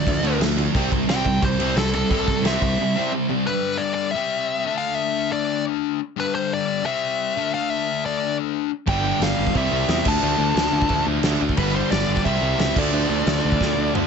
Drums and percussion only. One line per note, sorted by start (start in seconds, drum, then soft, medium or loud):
0.07 kick loud
0.07 crash medium
0.25 crash medium
0.41 snare loud
0.41 crash medium
0.58 crash medium
0.75 kick loud
0.75 crash medium
0.92 kick medium
0.92 crash medium
1.09 snare loud
1.09 crash medium
1.26 kick medium
1.26 crash medium
1.43 kick loud
1.43 crash medium
1.60 crash medium
1.77 snare loud
1.77 crash medium
1.93 crash medium
2.11 kick loud
2.11 crash medium
2.28 kick medium
2.28 crash medium
2.45 snare loud
2.45 crash medium
2.62 kick medium
2.62 crash medium
8.87 kick loud
8.87 crash medium
9.22 snare loud
9.22 crash medium
9.47 kick medium
9.55 kick medium
9.55 crash medium
9.89 snare loud
9.89 crash medium
10.05 kick loud
10.05 crash loud
10.23 crash medium
10.57 snare loud
10.57 crash medium
10.82 kick medium
10.89 kick loud
10.89 crash medium
11.23 snare loud
11.23 crash medium
11.49 kick medium
11.57 kick loud
11.57 crash medium
11.92 snare loud
11.92 crash medium
12.17 kick medium
12.26 kick loud
12.26 crash medium
12.59 snare loud
12.59 crash medium
12.76 kick loud
12.76 crash loud
12.93 crash medium
13.27 snare loud
13.27 crash medium
13.52 kick medium
13.61 kick loud
13.61 snare medium
13.95 mid tom loud